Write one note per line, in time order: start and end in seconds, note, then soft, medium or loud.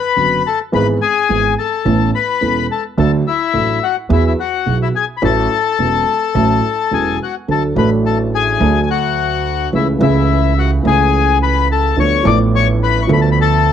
0.00 0.42 B4 medium
0.00 0.47 B5 medium
0.16 0.40 F#1 soft
0.16 0.40 F#2 soft
0.16 0.40 D3 soft
0.16 0.40 F#3 soft
0.16 0.40 B3 soft
0.16 0.40 F#4 soft
0.47 0.60 A4 soft
0.47 0.59 A5 medium
0.72 0.96 G#1 medium
0.72 0.97 G#1 medium
0.72 0.96 G#2 medium
0.72 0.96 E3 medium
0.72 0.96 G#3 medium
0.72 0.96 B3 medium
0.72 0.97 G#4 medium
0.72 0.87 B4 medium
0.72 0.87 B5 medium
1.02 1.54 G#4 medium
1.02 1.54 G#5 medium
1.29 1.53 G#1 soft
1.29 1.53 G#2 soft
1.29 1.53 E3 soft
1.29 1.53 G#3 soft
1.29 1.53 B3 soft
1.29 1.53 G#4 soft
1.59 2.11 A4 medium
1.59 2.10 A5 medium
1.85 2.09 A1 medium
1.85 2.09 A2 medium
1.85 2.09 E3 medium
1.85 2.09 B3 medium
1.85 2.09 C#4 soft
1.85 2.09 A4 medium
2.15 2.67 B4 medium
2.15 2.67 B5 medium
2.41 2.65 E1 soft
2.41 2.65 E2 soft
2.41 2.65 E3 soft
2.41 2.65 B3 soft
2.41 2.65 C#4 soft
2.41 2.65 A4 soft
2.71 2.84 A4 medium
2.71 2.84 A5 medium
2.97 3.21 D2 medium
2.97 3.21 D3 medium
2.97 3.21 F#3 medium
2.97 3.21 A3 medium
2.97 3.21 D4 medium
2.97 3.21 A4 medium
2.97 3.11 A4 medium
2.97 3.12 A5 medium
3.27 3.79 E4 medium
3.27 3.84 E5 medium
3.53 3.77 A1 soft
3.53 3.78 A1 medium
3.53 3.77 A2 soft
3.53 3.77 F#3 soft
3.53 3.77 A3 soft
3.53 3.77 D4 soft
3.53 3.77 A4 soft
3.83 3.96 F#4 medium
3.83 3.96 F#5 medium
4.09 4.33 E2 medium
4.09 4.34 E2 medium
4.09 4.33 E3 medium
4.09 4.33 F#3 medium
4.09 4.33 B3 soft
4.09 4.33 E4 medium
4.09 4.24 E4 medium
4.09 4.33 G#4 medium
4.09 4.26 E5 medium
4.27 4.33 E4 medium
4.27 4.33 E5 medium
4.40 4.78 F#4 medium
4.40 4.78 F#5 medium
4.66 4.90 B1 medium
4.66 4.90 B1 soft
4.66 4.90 B2 medium
4.66 4.89 F#3 soft
4.66 4.90 B3 soft
4.66 4.90 E4 soft
4.66 4.90 G#4 soft
4.82 4.88 E4 soft
4.82 4.88 E5 medium
4.95 5.05 G#4 medium
4.95 5.05 G#5 medium
5.17 5.23 B5 medium
5.22 5.46 A1 medium
5.22 5.46 A2 medium
5.22 5.46 F#3 medium
5.22 5.46 C#4 medium
5.22 5.46 E4 medium
5.22 5.46 A4 medium
5.22 7.17 A4 medium
5.22 7.17 A5 medium
5.79 6.02 E1 soft
5.79 6.02 E2 soft
5.79 6.02 F#3 soft
5.79 6.02 C#4 soft
5.79 6.02 E4 soft
5.79 6.02 A4 soft
6.34 6.58 A1 medium
6.34 6.59 A1 medium
6.34 6.59 A2 medium
6.34 6.58 F#3 medium
6.34 6.58 C#4 medium
6.34 6.59 E4 medium
6.34 6.59 A4 medium
6.91 7.15 E1 soft
6.91 7.15 E2 soft
6.91 7.15 F#3 soft
6.91 7.15 C#4 soft
6.91 7.15 E4 soft
6.91 7.19 G#4 medium
6.91 7.15 A4 soft
6.91 7.19 G#5 medium
7.23 7.35 F#4 medium
7.23 7.35 F#5 medium
7.48 7.72 D2 soft
7.48 7.72 D2 medium
7.48 7.72 D3 medium
7.48 7.72 F#3 soft
7.48 7.72 A3 soft
7.48 7.72 D4 soft
7.48 7.72 A4 soft
7.48 7.63 A4 medium
7.48 7.63 A5 medium
7.74 8.56 A1 medium
7.74 8.56 A2 medium
7.74 8.55 F#3 medium
7.74 8.56 A3 medium
7.74 8.57 D4 medium
7.74 7.90 B4 medium
7.74 7.90 B5 medium
7.78 8.57 A4 medium
8.06 8.18 A4 medium
8.06 8.18 A5 medium
8.35 8.79 G#4 medium
8.35 8.81 G#5 medium
8.59 9.67 D2 medium
8.59 9.67 D3 medium
8.59 9.66 F#3 medium
8.59 9.67 A3 medium
8.59 9.67 D4 medium
8.59 9.68 A4 medium
8.83 8.89 G#5 soft
8.90 9.69 F#4 medium
8.90 9.70 F#5 medium
9.73 9.96 C#2 medium
9.73 9.96 C#3 medium
9.73 9.96 E3 soft
9.73 9.96 A3 soft
9.73 9.96 C#4 soft
9.73 9.87 E4 medium
9.73 9.97 G#4 soft
9.73 9.87 E5 medium
9.99 10.80 C#2 medium
9.99 10.80 C#3 medium
9.99 10.79 E3 medium
9.99 10.80 A3 medium
9.99 10.81 C#4 medium
9.99 10.54 E4 medium
9.99 10.59 E5 medium
10.03 10.81 G#4 medium
10.58 10.71 F#4 medium
10.58 10.71 F#5 medium
10.83 11.91 C#2 medium
10.83 11.91 C#3 medium
10.83 11.90 E3 medium
10.83 11.91 A3 medium
10.83 11.91 C#4 medium
10.87 11.92 G#4 medium
10.87 11.38 G#4 medium
10.87 11.38 G#5 medium
11.42 11.68 B4 medium
11.42 11.68 B5 medium
11.72 11.96 A4 medium
11.72 11.99 A5 medium
11.96 12.20 D2 medium
11.96 12.20 D3 medium
11.96 12.20 F3 soft
11.96 12.20 B3 soft
11.96 12.20 D4 soft
11.96 12.20 A4 soft
11.96 12.24 C#5 medium
11.96 12.27 C#6 medium
12.23 13.05 A1 medium
12.23 13.05 A2 medium
12.23 13.04 F3 medium
12.23 13.04 B3 medium
12.23 13.05 D4 medium
12.23 13.06 A4 medium
12.23 12.39 D5 medium
12.23 12.39 D6 medium
12.55 12.67 C#5 medium
12.55 12.68 C#6 medium
12.83 13.01 B4 medium
12.83 13.03 B5 medium
13.02 13.11 C#6 medium
13.07 13.73 D2 medium
13.07 13.73 D3 medium
13.07 13.73 F3 medium
13.07 13.73 B3 medium
13.07 13.73 D4 medium
13.11 13.73 A4 medium
13.11 13.20 B5 medium
13.22 13.29 A5 medium
13.32 13.39 B5 medium
13.41 13.73 A4 medium
13.41 13.73 A5 medium